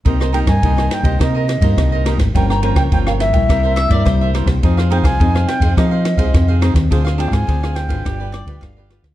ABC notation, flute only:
X:1
M:4/4
L:1/16
Q:1/4=105
K:Cm
V:1 name="Flute"
z2 g a3 g2 e6 z2 | g b b g g f =e8 z2 | z2 g a3 g2 e6 z2 | z2 g a3 g6 z4 |]